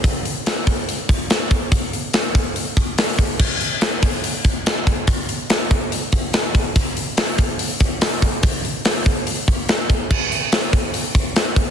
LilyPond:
\new DrumStaff \with { instrumentName = "Drums" } \drummode { \time 4/4 \tempo 4 = 143 <hho bd>8 hho8 <hho sn>8 <hho bd>8 hho8 <hho bd>8 <hho sn>8 <hho bd>8 | <hho bd>8 hho8 <hho sn>8 <hho bd>8 hho8 <hho bd>8 <hho sn>8 <hho bd>8 | <cymc bd>8 hho8 <hho sn>8 <hho bd>8 hho8 <hho bd>8 <hho sn>8 <hho bd>8 | <hho bd>8 hho8 <hho sn>8 <hho bd>8 hho8 <hho bd>8 <hho sn>8 <hho bd>8 |
<hho bd>8 hho8 <hho sn>8 <hho bd>8 hho8 <hho bd>8 <hho sn>8 <hho bd>8 | <hho bd>8 hho8 <hho sn>8 <hho bd>8 hho8 <hho bd>8 <hho sn>8 <hho bd>8 | <cymc bd>8 hho8 <hho sn>8 <hho bd>8 hho8 <hho bd>8 <hho sn>8 <hho bd>8 | }